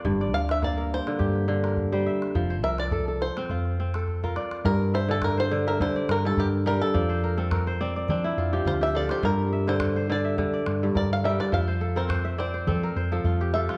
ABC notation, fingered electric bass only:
X:1
M:4/4
L:1/8
Q:"Swing 16ths" 1/4=105
K:Gdor
V:1 name="Fingered electric bass" clef=bass
G,,, D,,3 G,,4 | F,,, C,,3 F,,4 | G,,4 G, G,, G,,2 | F,,4 F, F,, D,,2 |
G,,4 G, G,, G,,2 | F,,4 F, F,, F,,2 |]